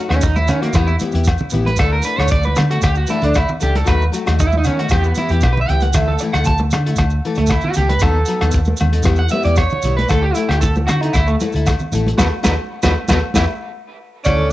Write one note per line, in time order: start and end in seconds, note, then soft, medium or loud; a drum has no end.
0.00 0.10 A3 medium
0.09 0.50 D#2 medium
0.09 0.26 A3 soft
0.09 0.22 C#4 medium
0.09 0.26 D#4 soft
0.09 0.25 F#4 soft
0.09 cross-stick medium
0.09 closed hi-hat soft
0.09 low agogo medium
0.21 0.36 D#4 medium
0.21 kick medium
0.21 closed hi-hat soft
0.21 shekere loud
0.36 0.48 E4 loud
0.36 high conga medium
0.36 shekere soft
0.47 0.69 D#3 medium
0.47 0.62 C#4 medium
0.47 closed hi-hat soft
0.47 high conga medium
0.47 low conga medium
0.47 low agogo medium
0.47 shekere medium
0.61 0.74 A3 soft
0.61 0.74 A#3 medium
0.61 0.74 D#4 soft
0.61 0.74 F#4 soft
0.61 closed hi-hat soft
0.73 0.95 E2 medium
0.73 0.90 E3 medium
0.73 0.87 B3 medium
0.73 0.90 B3 medium
0.73 0.91 E4 medium
0.73 0.91 G4 medium
0.73 kick medium
0.73 cross-stick medium
0.73 closed hi-hat soft
0.73 low agogo medium
0.73 shekere loud
0.87 0.95 E4 medium
0.87 shekere soft
0.99 1.14 E3 medium
0.99 1.14 B3 medium
0.99 1.13 E4 medium
0.99 1.12 G4 medium
0.99 closed hi-hat soft
0.99 high conga medium
0.99 shekere medium
1.12 1.34 E2 medium
1.12 1.30 B3 soft
1.12 1.30 E4 medium
1.12 1.29 G4 medium
1.12 closed hi-hat soft
1.12 shekere soft
1.24 kick medium
1.24 cross-stick medium
1.24 closed hi-hat soft
1.24 low agogo medium
1.24 shekere medium
1.38 low conga medium
1.38 shekere soft
1.50 1.73 A1 medium
1.50 1.68 E3 medium
1.50 1.68 B3 medium
1.50 1.69 E4 medium
1.50 1.69 G4 medium
1.50 closed hi-hat soft
1.50 low conga medium
1.50 shekere medium
1.66 1.79 B4 medium
1.66 closed hi-hat soft
1.66 high conga medium
1.76 2.00 D2 medium
1.76 1.94 E3 medium
1.76 1.95 A3 medium
1.76 1.95 D4 medium
1.76 1.95 A4 medium
1.76 1.92 A4 medium
1.76 kick medium
1.76 cross-stick medium
1.76 closed hi-hat medium
1.76 low agogo medium
1.76 shekere loud
1.93 2.04 A#4 medium
2.02 2.18 E3 medium
2.02 2.18 A3 medium
2.02 2.17 D4 medium
2.02 2.16 A4 medium
2.02 2.19 B4 loud
2.02 closed hi-hat medium
2.02 shekere medium
2.17 2.57 D2 medium
2.17 2.34 A3 soft
2.17 2.34 D4 medium
2.17 2.33 A4 soft
2.17 2.31 C#5 medium
2.17 cross-stick medium
2.17 closed hi-hat soft
2.17 low agogo medium
2.28 2.45 D5 loud
2.28 shekere medium
2.32 kick loud
2.32 closed hi-hat medium
2.43 2.57 B4 medium
2.43 high conga medium
2.43 shekere soft
2.56 2.77 D3 medium
2.56 muted clean electric guitar stroke medium
2.56 cross-stick medium
2.56 closed hi-hat medium
2.56 high conga medium
2.56 low conga medium
2.56 low agogo medium
2.56 shekere medium
2.70 2.87 A3 soft
2.70 2.83 F#4 medium
2.70 2.86 A4 medium
2.70 closed hi-hat medium
2.82 3.04 D2 medium
2.82 2.96 G4 loud
2.82 kick medium
2.82 cross-stick medium
2.82 closed hi-hat medium
2.82 low agogo medium
2.82 shekere medium
2.95 3.09 F#4 medium
2.95 shekere soft
3.07 3.22 E3 medium
3.07 3.22 A3 medium
3.07 3.20 D4 medium
3.07 3.23 E4 medium
3.07 3.19 A4 medium
3.07 closed hi-hat soft
3.07 high conga medium
3.07 shekere medium
3.20 3.43 D2 medium
3.20 3.38 A3 soft
3.20 3.37 D4 soft
3.20 3.36 D4 medium
3.20 3.37 A4 soft
3.20 closed hi-hat soft
3.20 shekere soft
3.34 3.49 E4 medium
3.34 kick medium
3.34 cross-stick medium
3.34 closed hi-hat medium
3.34 low agogo medium
3.34 shekere medium
3.48 muted clean electric guitar stroke medium
3.48 low conga medium
3.48 shekere soft
3.60 3.82 C#2 medium
3.60 3.76 E3 medium
3.60 3.77 A3 medium
3.60 3.77 D4 medium
3.60 3.76 G4 medium
3.60 3.77 A4 medium
3.60 closed hi-hat soft
3.60 low conga medium
3.60 shekere medium
3.75 3.88 A4 medium
3.75 closed hi-hat medium
3.75 high conga medium
3.84 4.08 D#2 loud
3.84 4.02 F#3 medium
3.84 4.02 A3 medium
3.84 4.02 D#4 medium
3.84 4.03 F#4 medium
3.84 kick medium
3.84 cross-stick medium
3.84 closed hi-hat soft
3.84 low agogo medium
3.84 shekere medium
3.89 4.04 B4 medium
4.02 shekere soft
4.12 4.26 F#3 medium
4.12 4.26 A3 medium
4.12 4.25 F#4 medium
4.12 muted steel-string acoustic guitar stroke medium
4.12 closed hi-hat medium
4.12 shekere medium
4.26 4.67 D#2 medium
4.26 4.43 A3 soft
4.26 4.42 D#4 soft
4.26 4.42 F#4 soft
4.26 cross-stick medium
4.26 closed hi-hat soft
4.26 low agogo medium
4.26 shekere soft
4.39 4.48 D#4 medium
4.39 kick medium
4.39 closed hi-hat medium
4.39 shekere medium
4.48 4.56 E4 medium
4.52 high conga medium
4.52 shekere soft
4.57 4.65 D#4 medium
4.64 4.86 D#3 medium
4.64 4.79 C#4 medium
4.64 closed hi-hat medium
4.64 low conga medium
4.64 low agogo medium
4.64 shekere medium
4.77 4.91 A3 soft
4.77 4.91 D#4 soft
4.77 4.90 F#4 soft
4.77 4.91 F#4 medium
4.77 closed hi-hat medium
4.89 5.12 E2 medium
4.89 5.07 E3 medium
4.89 5.07 B3 medium
4.89 5.04 G4 medium
4.89 5.08 G4 medium
4.89 muted steel-string acoustic guitar stroke medium
4.89 kick medium
4.89 cross-stick medium
4.89 closed hi-hat soft
4.89 low agogo medium
4.89 shekere medium
5.04 5.17 B3 soft
5.04 shekere soft
5.15 5.30 E3 medium
5.15 5.31 B3 medium
5.15 5.31 E4 medium
5.15 5.30 G4 medium
5.15 closed hi-hat soft
5.15 high conga medium
5.15 shekere medium
5.29 5.40 E2 medium
5.29 5.47 B3 soft
5.29 5.47 E4 soft
5.29 5.43 G4 medium
5.29 5.46 G4 medium
5.29 closed hi-hat soft
5.29 shekere soft
5.41 5.67 B1 medium
5.41 5.52 G4 medium
5.41 kick medium
5.41 cross-stick medium
5.41 closed hi-hat soft
5.41 low agogo medium
5.41 shekere medium
5.53 5.61 B4 medium
5.57 5.70 E5 medium
5.57 low conga medium
5.68 5.93 C#2 medium
5.68 5.84 E3 medium
5.68 5.85 B3 medium
5.68 5.85 E4 medium
5.68 5.85 G4 medium
5.68 5.83 G5 loud
5.68 closed hi-hat soft
5.68 low conga medium
5.80 5.96 F#5 medium
5.80 closed hi-hat soft
5.80 high conga medium
5.80 shekere soft
5.93 6.15 D2 medium
5.93 6.11 E3 medium
5.93 6.11 A3 medium
5.93 6.11 E4 medium
5.93 6.12 A4 medium
5.93 6.08 E5 medium
5.93 kick medium
5.93 cross-stick medium
5.93 closed hi-hat soft
5.93 low agogo medium
5.93 shekere loud
6.08 6.20 A4 medium
6.19 6.35 E3 medium
6.19 muted clean electric guitar stroke loud
6.19 closed hi-hat medium
6.19 shekere medium
6.23 6.35 A3 medium
6.23 6.35 E4 medium
6.23 6.35 A4 medium
6.33 6.74 D2 medium
6.33 6.51 E4 soft
6.33 6.50 A4 medium
6.33 6.46 F#5 loud
6.33 cross-stick medium
6.33 closed hi-hat soft
6.33 low agogo medium
6.44 6.60 A5 medium
6.44 kick medium
6.44 closed hi-hat medium
6.44 shekere loud
6.58 muted clean electric guitar stroke medium
6.58 high conga medium
6.58 shekere soft
6.71 6.93 D3 medium
6.71 cross-stick medium
6.71 closed hi-hat medium
6.71 high conga medium
6.71 low conga medium
6.71 low agogo medium
6.71 shekere medium
6.86 7.02 A3 soft
6.86 7.02 E4 soft
6.86 7.01 A4 medium
6.86 closed hi-hat medium
6.96 7.19 D2 loud
6.96 kick medium
6.96 cross-stick medium
6.96 closed hi-hat soft
6.96 low agogo medium
6.96 shekere loud
7.10 shekere soft
7.25 7.38 E3 medium
7.25 7.38 A3 medium
7.25 7.39 E4 medium
7.25 7.37 A4 medium
7.25 closed hi-hat soft
7.35 7.58 D2 medium
7.35 7.50 A3 medium
7.35 7.53 A4 soft
7.35 closed hi-hat soft
7.35 shekere soft
7.40 7.54 A3 soft
7.47 cross-stick medium
7.47 closed hi-hat medium
7.47 low agogo medium
7.47 shekere medium
7.51 7.64 E4 medium
7.51 kick medium
7.61 7.76 F#4 medium
7.61 low conga medium
7.61 shekere soft
7.74 7.97 C#2 medium
7.74 7.92 E3 medium
7.74 7.93 A3 medium
7.74 7.93 E4 medium
7.74 7.90 G4 medium
7.74 7.93 A4 medium
7.74 closed hi-hat medium
7.74 low conga medium
7.74 shekere medium
7.89 8.02 B4 loud
7.89 closed hi-hat medium
7.89 high conga medium
7.99 8.23 D#2 medium
7.99 8.18 F#3 medium
7.99 8.18 B3 medium
7.99 8.19 D#4 medium
7.99 8.54 A4 medium
7.99 8.19 A4 medium
7.99 kick medium
7.99 cross-stick medium
7.99 closed hi-hat medium
7.99 low agogo medium
7.99 shekere loud
8.26 8.41 F#3 medium
8.26 8.42 B3 medium
8.26 8.42 D#4 medium
8.26 8.40 A4 medium
8.26 closed hi-hat medium
8.26 shekere medium
8.41 8.71 D#2 medium
8.41 8.58 B3 soft
8.41 8.58 D#4 soft
8.41 8.57 A4 soft
8.41 cross-stick medium
8.41 closed hi-hat soft
8.41 low agogo medium
8.51 kick medium
8.51 closed hi-hat medium
8.51 shekere medium
8.65 high conga medium
8.65 shekere soft
8.77 9.00 D#2 medium
8.77 closed hi-hat medium
8.77 low agogo medium
8.77 shekere medium
8.81 high conga medium
8.81 low conga medium
8.92 9.04 D#4 soft
8.92 9.04 A4 medium
8.92 closed hi-hat medium
9.03 9.26 E2 loud
9.03 9.21 G3 medium
9.03 9.21 B3 medium
9.03 9.21 E4 medium
9.03 9.21 G4 medium
9.03 kick medium
9.03 cross-stick medium
9.03 closed hi-hat soft
9.03 low agogo medium
9.03 shekere medium
9.16 9.31 F#5 medium
9.16 shekere soft
9.29 9.45 G3 medium
9.29 9.44 B3 medium
9.29 9.43 E4 medium
9.29 9.43 G4 medium
9.29 9.44 E5 loud
9.29 closed hi-hat soft
9.29 shekere medium
9.33 high conga medium
9.43 9.65 E2 medium
9.43 9.61 B3 soft
9.43 9.60 E4 soft
9.43 9.60 G4 medium
9.43 9.57 D5 loud
9.43 closed hi-hat medium
9.43 shekere soft
9.56 9.94 C#5 medium
9.56 kick medium
9.56 cross-stick medium
9.56 closed hi-hat medium
9.56 low agogo medium
9.56 shekere medium
9.70 low conga medium
9.70 shekere soft
9.82 10.04 B1 medium
9.82 10.00 G3 medium
9.82 10.00 B3 medium
9.82 10.01 E4 medium
9.82 10.01 G4 medium
9.82 closed hi-hat soft
9.82 low conga medium
9.82 shekere medium
9.97 10.09 B4 medium
9.97 closed hi-hat soft
9.97 high conga medium
10.08 10.31 D2 loud
10.08 10.26 A3 medium
10.08 10.26 E4 medium
10.08 10.23 A4 medium
10.08 10.27 A4 medium
10.08 kick medium
10.08 cross-stick medium
10.08 closed hi-hat soft
10.08 low agogo medium
10.08 shekere medium
10.22 10.34 G4 medium
10.34 10.49 A3 medium
10.34 10.48 E4 medium
10.34 10.50 E4 medium
10.34 10.49 A4 medium
10.34 closed hi-hat medium
10.34 shekere medium
10.48 10.88 D2 medium
10.48 10.66 E4 soft
10.48 10.61 G4 medium
10.48 10.65 A4 medium
10.48 cross-stick medium
10.48 closed hi-hat soft
10.48 low agogo medium
10.61 10.74 A4 medium
10.61 kick medium
10.61 closed hi-hat soft
10.61 shekere medium
10.75 high conga medium
10.75 shekere soft
10.87 11.08 D3 medium
10.87 11.01 F#4 medium
10.87 cross-stick medium
10.87 closed hi-hat medium
10.87 high conga medium
10.87 low conga medium
10.87 low agogo medium
10.87 shekere medium
11.01 11.13 D#4 medium
11.01 11.18 E4 soft
11.01 11.17 A4 medium
11.01 closed hi-hat medium
11.13 11.35 D2 loud
11.13 11.27 E4 loud
11.13 kick medium
11.13 cross-stick medium
11.13 closed hi-hat medium
11.13 low agogo medium
11.13 shekere medium
11.27 11.35 A3 medium
11.27 shekere soft
11.40 11.53 A3 medium
11.40 11.54 E4 medium
11.40 11.53 A4 medium
11.40 closed hi-hat soft
11.40 high conga medium
11.40 shekere medium
11.52 11.74 D2 medium
11.52 11.70 E4 medium
11.52 11.69 A4 medium
11.52 closed hi-hat soft
11.52 shekere soft
11.66 kick medium
11.66 cross-stick medium
11.66 closed hi-hat medium
11.66 low agogo medium
11.66 shekere medium
11.79 low conga medium
11.79 shekere soft
11.92 12.12 A1 medium
11.92 12.08 A3 medium
11.92 12.08 E4 medium
11.92 12.09 A4 medium
11.92 closed hi-hat medium
11.92 low conga medium
11.92 shekere medium
12.07 closed hi-hat medium
12.07 high conga medium
12.18 12.28 D#2 loud
12.18 12.26 B3 medium
12.18 12.26 D#4 medium
12.18 12.26 F#4 medium
12.18 12.26 A4 medium
12.18 12.26 B4 medium
12.18 kick medium
12.18 snare medium
12.18 high conga loud
12.18 low agogo loud
12.18 shekere medium
12.43 12.54 D#2 loud
12.43 12.52 B3 loud
12.43 12.52 D#4 loud
12.43 12.52 F#4 medium
12.43 12.53 F#4 medium
12.43 12.53 A4 medium
12.43 12.53 B4 loud
12.43 kick medium
12.43 snare medium
12.43 high conga medium
12.43 low agogo medium
12.43 shekere loud
12.83 12.93 D#2 loud
12.83 12.91 B3 medium
12.83 12.91 D#4 medium
12.83 12.91 F#4 loud
12.83 12.91 A4 loud
12.83 12.91 B4 loud
12.83 kick medium
12.83 snare medium
12.83 high conga loud
12.83 low agogo loud
12.83 shekere loud
13.08 13.19 D#2 loud
13.08 13.17 B3 medium
13.08 13.17 D#4 medium
13.08 13.17 F#4 medium
13.08 13.18 A4 medium
13.08 13.17 B4 loud
13.08 kick medium
13.08 snare medium
13.08 high conga loud
13.08 low agogo loud
13.08 shekere medium
13.34 13.45 E2 loud
13.34 13.43 B3 medium
13.34 13.43 E4 medium
13.34 13.43 G4 medium
13.34 13.43 G4 loud
13.34 13.43 B4 medium
13.34 kick medium
13.34 snare medium
13.34 high conga loud
13.34 low agogo loud
13.34 shekere loud
14.24 14.53 D2 medium
14.24 14.41 A3 medium
14.24 14.53 A3 medium
14.24 14.53 C#4 medium
14.24 14.42 E4 medium
14.24 14.42 A4 medium
14.24 14.50 D5 medium
14.24 kick medium
14.24 cross-stick medium
14.24 low agogo medium
14.24 shekere medium
14.39 low conga medium